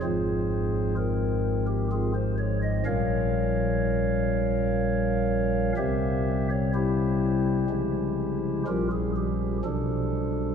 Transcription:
0.03 2.82 G#1 medium
0.03 2.82 G#2 medium
0.03 2.82 F3 medium
0.03 2.82 G#3 medium
0.03 1.90 C4 medium
0.03 0.95 F4 medium
0.03 0.95 G#4 medium
0.03 0.95 C5 loud
0.97 1.66 A#4 loud
1.67 1.87 G4 loud
1.92 2.12 C4 medium
1.92 2.12 F4 medium
1.92 2.12 G#4 loud
2.15 2.35 C5 loud
2.38 2.59 C#5 loud
2.63 2.83 D#5 loud
2.86 5.73 A#1 medium
2.86 5.73 A#2 medium
2.86 5.73 G3 medium
2.86 5.73 C#4 medium
2.86 5.73 A#4 loud
2.86 5.73 C#5 loud
2.86 5.72 F5 loud
5.77 7.66 C2 medium
5.77 7.66 C3 medium
5.77 7.66 G3 medium
5.77 7.66 C4 medium
5.77 6.48 G4 loud
5.77 6.48 C5 loud
5.77 6.48 E5 loud
6.50 6.71 C#5 loud
6.74 8.63 E4 loud
6.74 8.63 G4 loud
6.74 8.63 C5 loud
7.70 8.64 C#3 medium
7.70 8.64 F3 medium
7.70 8.64 G#3 medium
7.70 8.64 C#4 medium
8.67 9.62 A#1 medium
8.67 9.62 A#2 medium
8.67 9.62 F3 medium
8.67 9.62 G3 medium
8.67 9.62 C#4 medium
8.67 8.88 F4 loud
8.67 8.88 G4 loud
8.67 8.88 A#4 loud
8.92 9.12 G#4 loud
9.16 9.58 G4 loud
9.64 10.55 B1 medium
9.64 10.55 B2 medium
9.64 10.55 F3 medium
9.64 10.55 G3 medium
9.64 10.55 D4 medium
9.64 10.55 A4 loud

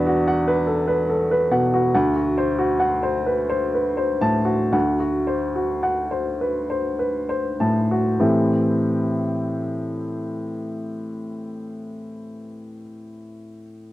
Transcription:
0.00 1.90 E2 medium
0.00 1.96 D4 soft
0.00 0.07 F#4 medium
0.00 0.18 B4 medium
0.00 0.28 F#5 medium
0.07 0.39 F#4 medium
0.28 0.59 F#5 medium
0.48 0.80 B4 medium
0.67 0.88 A4 soft
0.88 1.21 B4 soft
1.10 1.30 A4 soft
1.31 1.65 B4 medium
1.51 1.85 B2 soft
1.51 1.85 F#5 medium
1.74 1.94 F#4 medium
1.95 4.70 D2 medium
1.95 2.28 F#5 medium
2.16 2.50 F#4 soft
2.38 2.72 C5 soft
2.59 2.94 F#4 medium
2.80 3.17 F#5 soft
3.03 3.40 C5 soft
3.26 3.50 B4 soft
3.50 3.88 C5 soft
3.74 3.98 B4 soft
3.97 4.37 C5 soft
4.21 4.62 A2 soft
4.21 4.62 A5 medium
4.45 4.88 F#4 soft
4.72 8.16 D2 soft
4.72 5.16 F#5 medium
5.00 5.44 F#4 soft
5.27 5.72 C5 soft
5.56 6.00 F#4 soft
5.83 6.28 F#5 soft
6.11 6.57 C5 soft
6.41 6.70 B4 soft
6.70 7.17 C5 soft
6.99 7.29 B4 soft
7.29 7.79 C5 soft
7.60 8.09 A2 soft
7.60 8.09 A5 soft
7.91 8.21 F#4 soft
8.20 12.81 A2 soft
8.20 12.81 E3 soft
8.20 12.81 C4 soft
8.20 12.81 E4 soft
8.20 12.81 G4 soft
8.20 12.82 A4 soft

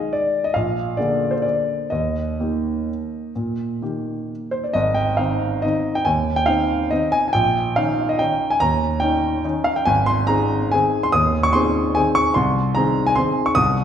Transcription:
0.00 0.51 D#3 soft
0.00 0.51 G#3 soft
0.00 0.51 G#4 soft
0.00 0.13 D#5 medium
0.13 0.44 D5 medium
0.44 0.55 D#5 medium
0.54 0.97 A#1 soft
0.54 0.97 F5 medium
0.97 1.88 D3 soft
0.97 1.88 A#3 soft
0.97 1.88 G#4 soft
0.97 1.32 D5 medium
1.31 1.43 C5 medium
1.42 1.90 D5 medium
1.90 2.38 D#2 soft
1.90 4.30 D#5 medium
2.40 3.32 D#3 soft
2.40 3.32 A#3 soft
2.40 3.32 G4 soft
3.36 3.81 A#2 soft
3.82 4.72 D#3 soft
3.82 4.72 A#3 soft
3.82 4.72 G4 soft
4.51 4.64 C5 medium
4.64 4.75 D5 soft
4.73 5.17 G#1 medium
4.73 4.96 D#5 medium
4.94 5.18 G5 medium
5.17 5.59 D#3 soft
5.17 5.59 C4 soft
5.17 5.59 D#4 soft
5.17 5.62 F5 medium
5.62 6.02 D#3 soft
5.62 6.02 C4 soft
5.62 6.03 D#4 soft
5.62 5.95 D#5 medium
5.95 6.06 G5 medium
6.05 6.46 D#2 medium
6.05 6.36 G#5 medium
6.36 6.47 G5 medium
6.46 6.87 D#3 soft
6.46 6.87 C4 soft
6.46 6.87 D#4 soft
6.46 6.90 F5 medium
6.91 7.31 D#3 soft
6.91 7.31 C4 soft
6.91 7.31 D#4 soft
6.91 7.13 D#5 medium
7.12 7.27 G#5 medium
7.28 7.35 G#5 medium
7.33 7.76 A#1 medium
7.33 7.76 G5 medium
7.76 8.16 D#3 soft
7.76 8.16 C#4 soft
7.76 8.16 D#4 soft
7.76 8.09 F5 medium
8.09 8.20 D#5 medium
8.19 8.58 D#3 soft
8.19 8.58 C#4 soft
8.19 8.58 D#4 soft
8.19 8.51 G5 medium
8.50 8.61 G#5 medium
8.60 9.01 D#2 medium
8.60 9.01 A#5 loud
9.00 9.41 D#3 soft
9.00 9.41 C#4 soft
9.00 9.41 D#4 soft
9.00 9.44 G5 medium
9.45 9.83 D#3 soft
9.45 9.83 C#4 soft
9.45 9.84 D#4 soft
9.64 9.76 F5 medium
9.76 9.87 G5 medium
9.86 10.27 G#1 medium
9.86 10.07 G#5 medium
10.06 10.28 C6 medium
10.27 10.69 D#3 soft
10.27 10.69 C4 soft
10.27 10.69 G#4 soft
10.27 10.72 A#5 medium
10.72 11.10 D#3 soft
10.72 11.10 C4 soft
10.72 11.11 G#4 soft
10.72 11.03 G#5 medium
11.03 11.14 C6 medium
11.12 11.53 D#2 medium
11.12 11.44 D#6 loud
11.43 11.54 C#6 loud
11.53 11.92 D#3 soft
11.53 11.92 C4 soft
11.53 11.93 G#4 medium
11.53 11.95 C6 medium
11.95 12.32 D#3 soft
11.95 12.33 C4 soft
11.95 12.33 G#4 soft
11.95 12.16 G#5 medium
12.15 12.36 C#6 loud
12.34 12.75 C2 medium
12.34 12.75 C6 medium
12.75 13.13 D#3 soft
12.75 13.13 C4 soft
12.75 13.13 G#4 medium
12.75 13.06 A#5 medium
13.07 13.17 G#5 medium
13.15 13.52 D#3 soft
13.15 13.52 C4 soft
13.15 13.53 G#4 medium
13.15 13.46 C6 medium
13.46 13.56 C#6 medium
13.55 13.84 C2 medium
13.55 13.84 D#6 loud

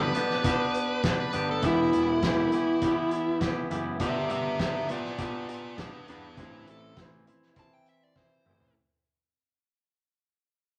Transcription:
0.00 0.12 G1 medium
0.00 0.15 B3 medium
0.00 0.14 D4 medium
0.00 0.16 G4 medium
0.00 1.16 B4 medium
0.15 0.44 B3 medium
0.15 0.44 D4 medium
0.15 0.46 G4 medium
0.15 closed hi-hat medium
0.30 snare soft
0.44 1.03 B3 medium
0.44 1.03 D4 medium
0.44 1.04 G4 loud
0.44 kick loud
0.44 closed hi-hat medium
0.74 closed hi-hat medium
1.03 1.33 B3 medium
1.03 1.32 D4 medium
1.03 1.34 G4 medium
1.03 kick loud
1.03 snare loud
1.03 closed hi-hat medium
1.20 1.48 B4 medium
1.33 1.61 G1 medium
1.33 1.63 B3 medium
1.33 1.61 D4 medium
1.33 1.64 G4 medium
1.33 closed hi-hat medium
1.51 1.64 A4 medium
1.62 1.90 E1 medium
1.62 2.22 E3 medium
1.62 2.24 B3 medium
1.62 2.24 E4 loud
1.62 3.38 E4 medium
1.62 2.25 G4 medium
1.62 kick loud
1.62 closed hi-hat medium
1.93 2.21 E1 medium
1.93 closed hi-hat medium
2.22 2.49 E1 medium
2.22 2.51 E3 medium
2.22 2.53 B3 medium
2.22 2.53 E4 medium
2.22 2.54 G4 medium
2.22 kick loud
2.22 snare loud
2.22 closed hi-hat medium
2.52 2.81 E3 medium
2.52 2.81 B3 medium
2.52 2.82 E4 medium
2.52 2.83 G4 medium
2.52 closed hi-hat medium
2.81 3.39 E3 medium
2.81 3.40 B3 loud
2.81 3.41 E4 medium
2.81 3.42 G4 loud
2.81 kick loud
2.81 closed hi-hat medium
3.11 closed hi-hat medium
3.40 3.69 E3 medium
3.40 3.70 B3 medium
3.40 3.70 E4 medium
3.40 3.70 G4 medium
3.40 kick loud
3.40 snare medium
3.40 closed hi-hat medium
3.70 3.97 F#1 medium
3.70 3.98 E3 medium
3.70 3.98 B3 medium
3.70 3.99 E4 medium
3.70 3.99 G4 medium
3.70 closed hi-hat medium
4.00 4.27 G1 loud
4.00 4.58 B3 medium
4.00 4.58 D4 medium
4.00 4.59 G4 medium
4.00 4.30 G4 medium
4.00 4.30 E5 loud
4.00 kick loud
4.00 closed hi-hat medium
4.29 4.57 G1 medium
4.29 4.58 G4 medium
4.29 4.59 E5 medium
4.29 closed hi-hat medium
4.59 4.86 G1 medium
4.59 4.88 B3 medium
4.59 4.89 D4 medium
4.59 4.90 G4 medium
4.59 4.87 G4 medium
4.59 4.89 E5 medium
4.59 kick loud
4.59 snare loud
4.59 closed hi-hat medium
4.89 5.17 B3 medium
4.89 5.17 D4 medium
4.89 5.17 F4 medium
4.89 5.18 G4 medium
4.89 5.19 D5 medium
4.89 closed hi-hat medium
5.04 snare soft
5.18 5.76 B3 loud
5.18 5.77 D4 loud
5.18 5.47 F4 medium
5.18 5.78 G4 medium
5.18 5.48 D5 medium
5.18 kick loud
5.18 closed hi-hat medium
5.49 5.76 F4 medium
5.49 5.78 D5 medium
5.49 closed hi-hat medium
5.77 6.07 B3 medium
5.77 6.08 D4 medium
5.77 6.06 D4 medium
5.77 6.09 G4 medium
5.77 6.08 B4 medium
5.77 kick medium
5.77 snare loud
5.77 closed hi-hat medium
6.07 6.35 E2 medium
6.07 6.36 B3 medium
6.07 6.36 D4 medium
6.07 6.37 G4 medium
6.07 6.38 B4 medium
6.07 closed hi-hat medium
6.37 6.65 A1 medium
6.37 6.96 E3 medium
6.37 6.96 C4 medium
6.37 6.66 D4 medium
6.37 6.97 E4 loud
6.37 6.67 B4 medium
6.37 kick loud
6.37 closed hi-hat medium
6.67 6.94 A1 medium
6.67 6.98 A4 medium
6.67 closed hi-hat soft
6.97 7.24 A1 medium
6.97 7.26 E3 medium
6.97 7.27 C4 medium
6.97 7.28 E4 medium
6.97 kick loud
6.97 snare medium
6.97 closed hi-hat medium
7.27 7.55 E3 medium
7.27 7.55 C4 medium
7.27 7.56 E4 medium
7.27 closed hi-hat medium
7.43 snare soft
7.56 8.14 E3 medium
7.56 8.15 C4 loud
7.56 8.16 E4 medium
7.56 7.74 A5 loud
7.56 kick loud
7.56 closed hi-hat medium
7.74 7.87 G5 medium
7.86 8.04 E5 medium
7.86 closed hi-hat medium
8.04 8.17 D5 medium
8.16 8.44 E3 medium
8.16 8.45 C4 medium
8.16 8.45 E4 medium
8.16 8.74 C5 medium
8.16 kick loud
8.16 snare soft
8.45 8.73 A1 medium
8.45 8.73 E3 medium
8.45 8.74 C4 medium
8.45 8.74 E4 medium
8.45 mid tom medium
8.60 floor tom medium

